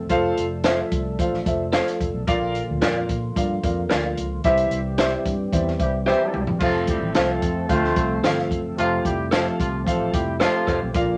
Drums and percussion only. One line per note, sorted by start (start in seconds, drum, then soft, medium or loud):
0.10 kick medium
0.10 closed hi-hat medium
0.38 closed hi-hat medium
0.64 snare loud
0.64 closed hi-hat medium
0.92 kick medium
0.92 closed hi-hat medium
1.19 kick medium
1.19 closed hi-hat medium
1.34 snare soft
1.46 kick medium
1.46 closed hi-hat medium
1.73 snare loud
1.73 closed hi-hat medium
1.88 snare soft
1.88 closed hi-hat medium
2.01 kick medium
2.01 closed hi-hat medium
2.28 kick loud
2.28 closed hi-hat medium
2.55 closed hi-hat medium
2.82 snare loud
2.82 closed hi-hat medium
3.09 kick medium
3.09 closed hi-hat medium
3.36 kick medium
3.36 closed hi-hat medium
3.64 kick medium
3.64 closed hi-hat medium
3.91 snare loud
3.91 closed hi-hat medium
4.17 closed hi-hat medium
4.44 kick loud
4.44 closed hi-hat medium
4.58 closed hi-hat medium
4.71 closed hi-hat medium
4.98 snare loud
4.98 closed hi-hat medium
5.26 kick medium
5.26 closed hi-hat medium
5.53 kick medium
5.53 closed hi-hat medium
5.68 snare soft
5.80 kick medium
5.80 closed hi-hat medium
6.08 snare medium
6.34 mid tom medium
6.47 floor tom medium
6.60 kick loud
6.60 crash medium
6.87 kick medium
6.87 closed hi-hat medium
7.15 snare loud
7.15 closed hi-hat medium
7.42 kick medium
7.42 closed hi-hat medium
7.69 kick medium
7.69 closed hi-hat medium
7.84 snare soft
7.96 kick medium
7.96 closed hi-hat medium
8.24 snare loud
8.24 closed hi-hat medium
8.39 snare soft
8.51 kick medium
8.51 closed hi-hat medium
8.78 closed hi-hat medium
9.05 kick medium
9.05 closed hi-hat medium
9.32 snare loud
9.32 closed hi-hat medium
9.60 kick medium
9.60 closed hi-hat medium
9.87 kick medium
9.87 closed hi-hat medium
10.14 kick medium
10.14 closed hi-hat medium
10.41 snare loud
10.41 closed hi-hat medium
10.67 kick medium
10.67 closed hi-hat medium
10.94 kick loud
10.94 closed hi-hat medium